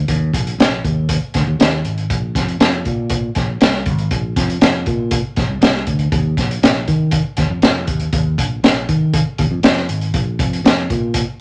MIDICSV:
0, 0, Header, 1, 3, 480
1, 0, Start_track
1, 0, Tempo, 502934
1, 81, Time_signature, 4, 2, 24, 8
1, 10886, End_track
2, 0, Start_track
2, 0, Title_t, "Fingered electric bass"
2, 0, Program_c, 0, 33
2, 80, Note_on_c, 0, 39, 103
2, 291, Note_off_c, 0, 39, 0
2, 318, Note_on_c, 0, 34, 94
2, 530, Note_off_c, 0, 34, 0
2, 558, Note_on_c, 0, 34, 93
2, 770, Note_off_c, 0, 34, 0
2, 805, Note_on_c, 0, 39, 95
2, 1119, Note_off_c, 0, 39, 0
2, 1287, Note_on_c, 0, 38, 79
2, 1390, Note_off_c, 0, 38, 0
2, 1400, Note_on_c, 0, 39, 89
2, 1506, Note_off_c, 0, 39, 0
2, 1520, Note_on_c, 0, 39, 86
2, 1731, Note_off_c, 0, 39, 0
2, 1757, Note_on_c, 0, 32, 91
2, 1970, Note_off_c, 0, 32, 0
2, 2004, Note_on_c, 0, 34, 100
2, 2214, Note_off_c, 0, 34, 0
2, 2245, Note_on_c, 0, 41, 95
2, 2455, Note_off_c, 0, 41, 0
2, 2483, Note_on_c, 0, 41, 99
2, 2694, Note_off_c, 0, 41, 0
2, 2727, Note_on_c, 0, 46, 93
2, 3146, Note_off_c, 0, 46, 0
2, 3208, Note_on_c, 0, 34, 79
2, 3416, Note_off_c, 0, 34, 0
2, 3450, Note_on_c, 0, 36, 100
2, 3685, Note_on_c, 0, 32, 101
2, 3699, Note_off_c, 0, 36, 0
2, 3895, Note_off_c, 0, 32, 0
2, 3926, Note_on_c, 0, 34, 112
2, 4135, Note_off_c, 0, 34, 0
2, 4164, Note_on_c, 0, 41, 101
2, 4374, Note_off_c, 0, 41, 0
2, 4407, Note_on_c, 0, 41, 99
2, 4616, Note_off_c, 0, 41, 0
2, 4646, Note_on_c, 0, 46, 99
2, 4960, Note_off_c, 0, 46, 0
2, 5126, Note_on_c, 0, 34, 79
2, 5230, Note_off_c, 0, 34, 0
2, 5237, Note_on_c, 0, 36, 79
2, 5345, Note_off_c, 0, 36, 0
2, 5354, Note_on_c, 0, 36, 92
2, 5569, Note_off_c, 0, 36, 0
2, 5604, Note_on_c, 0, 38, 81
2, 5814, Note_off_c, 0, 38, 0
2, 5841, Note_on_c, 0, 39, 100
2, 6052, Note_off_c, 0, 39, 0
2, 6081, Note_on_c, 0, 34, 88
2, 6292, Note_off_c, 0, 34, 0
2, 6320, Note_on_c, 0, 34, 90
2, 6532, Note_off_c, 0, 34, 0
2, 6566, Note_on_c, 0, 51, 94
2, 6880, Note_off_c, 0, 51, 0
2, 7042, Note_on_c, 0, 39, 79
2, 7148, Note_off_c, 0, 39, 0
2, 7158, Note_on_c, 0, 41, 83
2, 7265, Note_off_c, 0, 41, 0
2, 7276, Note_on_c, 0, 41, 91
2, 7519, Note_off_c, 0, 41, 0
2, 7519, Note_on_c, 0, 39, 87
2, 7731, Note_off_c, 0, 39, 0
2, 7756, Note_on_c, 0, 39, 109
2, 7969, Note_off_c, 0, 39, 0
2, 7999, Note_on_c, 0, 34, 94
2, 8211, Note_off_c, 0, 34, 0
2, 8238, Note_on_c, 0, 34, 88
2, 8450, Note_off_c, 0, 34, 0
2, 8483, Note_on_c, 0, 51, 93
2, 8798, Note_off_c, 0, 51, 0
2, 8963, Note_on_c, 0, 39, 84
2, 9068, Note_off_c, 0, 39, 0
2, 9073, Note_on_c, 0, 41, 89
2, 9182, Note_off_c, 0, 41, 0
2, 9194, Note_on_c, 0, 41, 91
2, 9408, Note_off_c, 0, 41, 0
2, 9434, Note_on_c, 0, 32, 85
2, 9648, Note_off_c, 0, 32, 0
2, 9677, Note_on_c, 0, 34, 110
2, 9889, Note_off_c, 0, 34, 0
2, 9920, Note_on_c, 0, 41, 94
2, 10131, Note_off_c, 0, 41, 0
2, 10159, Note_on_c, 0, 41, 97
2, 10370, Note_off_c, 0, 41, 0
2, 10404, Note_on_c, 0, 46, 95
2, 10718, Note_off_c, 0, 46, 0
2, 10886, End_track
3, 0, Start_track
3, 0, Title_t, "Drums"
3, 79, Note_on_c, 9, 42, 80
3, 80, Note_on_c, 9, 36, 84
3, 174, Note_off_c, 9, 42, 0
3, 175, Note_off_c, 9, 36, 0
3, 320, Note_on_c, 9, 36, 92
3, 327, Note_on_c, 9, 42, 89
3, 415, Note_off_c, 9, 36, 0
3, 423, Note_off_c, 9, 42, 0
3, 448, Note_on_c, 9, 42, 53
3, 544, Note_off_c, 9, 42, 0
3, 572, Note_on_c, 9, 42, 94
3, 577, Note_on_c, 9, 38, 115
3, 668, Note_off_c, 9, 42, 0
3, 672, Note_off_c, 9, 38, 0
3, 806, Note_on_c, 9, 36, 80
3, 808, Note_on_c, 9, 42, 61
3, 902, Note_off_c, 9, 36, 0
3, 903, Note_off_c, 9, 42, 0
3, 1039, Note_on_c, 9, 42, 102
3, 1041, Note_on_c, 9, 36, 82
3, 1134, Note_off_c, 9, 42, 0
3, 1136, Note_off_c, 9, 36, 0
3, 1279, Note_on_c, 9, 42, 82
3, 1287, Note_on_c, 9, 36, 85
3, 1289, Note_on_c, 9, 38, 32
3, 1374, Note_off_c, 9, 42, 0
3, 1382, Note_off_c, 9, 36, 0
3, 1385, Note_off_c, 9, 38, 0
3, 1525, Note_on_c, 9, 42, 94
3, 1535, Note_on_c, 9, 38, 105
3, 1621, Note_off_c, 9, 42, 0
3, 1630, Note_off_c, 9, 38, 0
3, 1762, Note_on_c, 9, 42, 53
3, 1858, Note_off_c, 9, 42, 0
3, 1885, Note_on_c, 9, 42, 44
3, 1981, Note_off_c, 9, 42, 0
3, 2005, Note_on_c, 9, 36, 103
3, 2006, Note_on_c, 9, 42, 81
3, 2100, Note_off_c, 9, 36, 0
3, 2101, Note_off_c, 9, 42, 0
3, 2244, Note_on_c, 9, 36, 97
3, 2249, Note_on_c, 9, 42, 94
3, 2257, Note_on_c, 9, 38, 38
3, 2340, Note_off_c, 9, 36, 0
3, 2345, Note_off_c, 9, 42, 0
3, 2352, Note_off_c, 9, 38, 0
3, 2371, Note_on_c, 9, 42, 52
3, 2466, Note_off_c, 9, 42, 0
3, 2485, Note_on_c, 9, 42, 87
3, 2489, Note_on_c, 9, 38, 120
3, 2580, Note_off_c, 9, 42, 0
3, 2585, Note_off_c, 9, 38, 0
3, 2723, Note_on_c, 9, 42, 58
3, 2727, Note_on_c, 9, 36, 82
3, 2819, Note_off_c, 9, 42, 0
3, 2823, Note_off_c, 9, 36, 0
3, 2955, Note_on_c, 9, 42, 99
3, 2963, Note_on_c, 9, 36, 87
3, 3050, Note_off_c, 9, 42, 0
3, 3058, Note_off_c, 9, 36, 0
3, 3198, Note_on_c, 9, 42, 78
3, 3209, Note_on_c, 9, 36, 95
3, 3209, Note_on_c, 9, 38, 37
3, 3294, Note_off_c, 9, 42, 0
3, 3304, Note_off_c, 9, 36, 0
3, 3304, Note_off_c, 9, 38, 0
3, 3442, Note_on_c, 9, 42, 92
3, 3452, Note_on_c, 9, 38, 105
3, 3538, Note_off_c, 9, 42, 0
3, 3548, Note_off_c, 9, 38, 0
3, 3566, Note_on_c, 9, 38, 34
3, 3662, Note_off_c, 9, 38, 0
3, 3681, Note_on_c, 9, 42, 60
3, 3686, Note_on_c, 9, 36, 84
3, 3777, Note_off_c, 9, 42, 0
3, 3781, Note_off_c, 9, 36, 0
3, 3803, Note_on_c, 9, 42, 41
3, 3899, Note_off_c, 9, 42, 0
3, 3921, Note_on_c, 9, 42, 85
3, 3924, Note_on_c, 9, 36, 97
3, 4016, Note_off_c, 9, 42, 0
3, 4020, Note_off_c, 9, 36, 0
3, 4164, Note_on_c, 9, 36, 100
3, 4166, Note_on_c, 9, 42, 90
3, 4174, Note_on_c, 9, 38, 39
3, 4260, Note_off_c, 9, 36, 0
3, 4262, Note_off_c, 9, 42, 0
3, 4269, Note_off_c, 9, 38, 0
3, 4291, Note_on_c, 9, 42, 52
3, 4386, Note_off_c, 9, 42, 0
3, 4404, Note_on_c, 9, 42, 95
3, 4408, Note_on_c, 9, 38, 123
3, 4499, Note_off_c, 9, 42, 0
3, 4503, Note_off_c, 9, 38, 0
3, 4640, Note_on_c, 9, 42, 62
3, 4646, Note_on_c, 9, 36, 82
3, 4735, Note_off_c, 9, 42, 0
3, 4741, Note_off_c, 9, 36, 0
3, 4877, Note_on_c, 9, 42, 104
3, 4882, Note_on_c, 9, 36, 93
3, 4972, Note_off_c, 9, 42, 0
3, 4977, Note_off_c, 9, 36, 0
3, 5119, Note_on_c, 9, 42, 76
3, 5127, Note_on_c, 9, 36, 96
3, 5130, Note_on_c, 9, 38, 33
3, 5215, Note_off_c, 9, 42, 0
3, 5222, Note_off_c, 9, 36, 0
3, 5226, Note_off_c, 9, 38, 0
3, 5361, Note_on_c, 9, 42, 91
3, 5371, Note_on_c, 9, 38, 111
3, 5456, Note_off_c, 9, 42, 0
3, 5466, Note_off_c, 9, 38, 0
3, 5489, Note_on_c, 9, 38, 33
3, 5584, Note_off_c, 9, 38, 0
3, 5599, Note_on_c, 9, 42, 61
3, 5602, Note_on_c, 9, 36, 75
3, 5695, Note_off_c, 9, 42, 0
3, 5697, Note_off_c, 9, 36, 0
3, 5716, Note_on_c, 9, 42, 45
3, 5811, Note_off_c, 9, 42, 0
3, 5841, Note_on_c, 9, 36, 101
3, 5841, Note_on_c, 9, 42, 83
3, 5937, Note_off_c, 9, 36, 0
3, 5937, Note_off_c, 9, 42, 0
3, 6082, Note_on_c, 9, 36, 94
3, 6087, Note_on_c, 9, 42, 87
3, 6094, Note_on_c, 9, 38, 39
3, 6177, Note_off_c, 9, 36, 0
3, 6182, Note_off_c, 9, 42, 0
3, 6190, Note_off_c, 9, 38, 0
3, 6213, Note_on_c, 9, 42, 55
3, 6308, Note_off_c, 9, 42, 0
3, 6330, Note_on_c, 9, 42, 94
3, 6334, Note_on_c, 9, 38, 116
3, 6425, Note_off_c, 9, 42, 0
3, 6430, Note_off_c, 9, 38, 0
3, 6563, Note_on_c, 9, 42, 68
3, 6565, Note_on_c, 9, 36, 74
3, 6658, Note_off_c, 9, 42, 0
3, 6660, Note_off_c, 9, 36, 0
3, 6789, Note_on_c, 9, 42, 98
3, 6798, Note_on_c, 9, 36, 87
3, 6884, Note_off_c, 9, 42, 0
3, 6893, Note_off_c, 9, 36, 0
3, 7032, Note_on_c, 9, 42, 82
3, 7042, Note_on_c, 9, 36, 91
3, 7042, Note_on_c, 9, 38, 36
3, 7127, Note_off_c, 9, 42, 0
3, 7138, Note_off_c, 9, 36, 0
3, 7138, Note_off_c, 9, 38, 0
3, 7275, Note_on_c, 9, 42, 86
3, 7284, Note_on_c, 9, 38, 104
3, 7370, Note_off_c, 9, 42, 0
3, 7380, Note_off_c, 9, 38, 0
3, 7515, Note_on_c, 9, 42, 64
3, 7518, Note_on_c, 9, 36, 92
3, 7610, Note_off_c, 9, 42, 0
3, 7614, Note_off_c, 9, 36, 0
3, 7631, Note_on_c, 9, 42, 49
3, 7727, Note_off_c, 9, 42, 0
3, 7755, Note_on_c, 9, 42, 83
3, 7757, Note_on_c, 9, 36, 100
3, 7851, Note_off_c, 9, 42, 0
3, 7853, Note_off_c, 9, 36, 0
3, 7999, Note_on_c, 9, 36, 101
3, 8004, Note_on_c, 9, 42, 94
3, 8094, Note_off_c, 9, 36, 0
3, 8100, Note_off_c, 9, 42, 0
3, 8244, Note_on_c, 9, 42, 91
3, 8248, Note_on_c, 9, 38, 105
3, 8339, Note_off_c, 9, 42, 0
3, 8344, Note_off_c, 9, 38, 0
3, 8482, Note_on_c, 9, 42, 68
3, 8483, Note_on_c, 9, 36, 75
3, 8577, Note_off_c, 9, 42, 0
3, 8579, Note_off_c, 9, 36, 0
3, 8719, Note_on_c, 9, 36, 86
3, 8719, Note_on_c, 9, 42, 101
3, 8814, Note_off_c, 9, 36, 0
3, 8814, Note_off_c, 9, 42, 0
3, 8956, Note_on_c, 9, 42, 79
3, 8962, Note_on_c, 9, 36, 97
3, 9051, Note_off_c, 9, 42, 0
3, 9057, Note_off_c, 9, 36, 0
3, 9192, Note_on_c, 9, 42, 86
3, 9202, Note_on_c, 9, 38, 105
3, 9288, Note_off_c, 9, 42, 0
3, 9298, Note_off_c, 9, 38, 0
3, 9325, Note_on_c, 9, 38, 34
3, 9421, Note_off_c, 9, 38, 0
3, 9439, Note_on_c, 9, 42, 61
3, 9534, Note_off_c, 9, 42, 0
3, 9557, Note_on_c, 9, 42, 49
3, 9653, Note_off_c, 9, 42, 0
3, 9676, Note_on_c, 9, 42, 87
3, 9678, Note_on_c, 9, 36, 104
3, 9772, Note_off_c, 9, 42, 0
3, 9773, Note_off_c, 9, 36, 0
3, 9918, Note_on_c, 9, 36, 105
3, 9923, Note_on_c, 9, 42, 98
3, 10014, Note_off_c, 9, 36, 0
3, 10018, Note_off_c, 9, 42, 0
3, 10053, Note_on_c, 9, 42, 56
3, 10148, Note_off_c, 9, 42, 0
3, 10169, Note_on_c, 9, 42, 101
3, 10174, Note_on_c, 9, 38, 120
3, 10265, Note_off_c, 9, 42, 0
3, 10269, Note_off_c, 9, 38, 0
3, 10404, Note_on_c, 9, 36, 87
3, 10405, Note_on_c, 9, 42, 63
3, 10499, Note_off_c, 9, 36, 0
3, 10500, Note_off_c, 9, 42, 0
3, 10632, Note_on_c, 9, 42, 110
3, 10636, Note_on_c, 9, 36, 82
3, 10728, Note_off_c, 9, 42, 0
3, 10732, Note_off_c, 9, 36, 0
3, 10886, End_track
0, 0, End_of_file